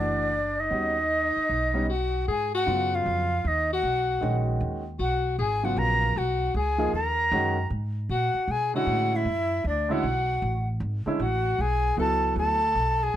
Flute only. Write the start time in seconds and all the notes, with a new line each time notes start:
Already playing: D5
0.60 D#5
1.90 F#5
2.31 G#5
2.56 F#5
2.95 F5
3.48 D#5
3.74 F#5
5.01 F#5
5.40 G#5
5.65 F#5
5.78 A#5
6.18 F#5
6.58 G#5
6.95 A#5
8.12 F#5
8.51 G#5
8.76 F#5
9.16 E5
9.68 D5
9.92 F#5
11.22 F#5
11.61 G#5
12.00 A5
12.39 A5
13.03 G#5